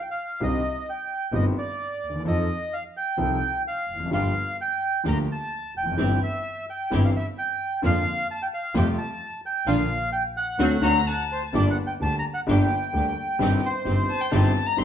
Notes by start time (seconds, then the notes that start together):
0.02 G5
0.11 F5
0.40 C2 C3 D#3 C4 D4 G4 D#5
0.90 G5
1.32 G1 G2 D#3 C4 D4 G4 D#5
1.59 D5
2.02 D#2
2.09 D2
2.14 D#2
2.20 E2
2.25 F2 F3 C4 D#4 A4 D#5
2.73 F5
2.97 G5
3.17 C2 C3 F3 C4 D#4 A4
3.68 F5
3.88 F1
3.94 E2
4.00 F2
4.05 F#2
4.11 G1 G2 F3 A#3 D4 F4 G4 F5
4.61 G5
5.04 D2 D3 F3 A#3 D4 F4 G4
5.08 A#5
5.32 A5
5.75 F1 G5
5.82 E2
5.86 F2
5.92 F#2
5.97 G1 G2 E3 G3 C4 E4 G4
6.23 E5
6.70 G5
6.90 G1 G2 E3 G3 C4 E4 G4
7.05 F5
7.16 E5
7.38 G5
7.82 F2 D3 F3 A#3 D4 F4 F5
8.31 A5
8.43 G5
8.54 F5
8.74 F2 C3 F3 G3 A3 F4 G4 G5
8.98 A5
9.46 G5
9.66 A#1 D3 F3 A#3 D4 F4 F5
10.12 G5
10.37 F#5
10.58 D2 D3 F#3 A3 C4 D4 F#4
10.82 D2 D3 F#3 A3 C4 D4 F#4 A#5
11.08 A5
11.32 C5
11.53 G1 G2 D3 G3 A#3 D4 G4 D5
11.71 F#5
11.87 G5
12.00 D2 D3 G3 A#3 D4 G4 A5
12.19 A#5
12.34 F#5
12.46 G1 G2 D3 G3 A#3 D4 G4
12.51 G5
12.93 D2 D3 G3 A#3 D4 G4
13.39 G1 G2 D#3 G3 C4 D#4 G4
13.66 C5
13.85 G1 G2 D#3 G3 C4 D#4 G4
14.09 A5
14.21 G5
14.31 G1 G2 D#3 G3 C4 D#4 G4 A5
14.67 A#5
14.77 G1 G2 D#3 G3 C4 D#4 G4 C6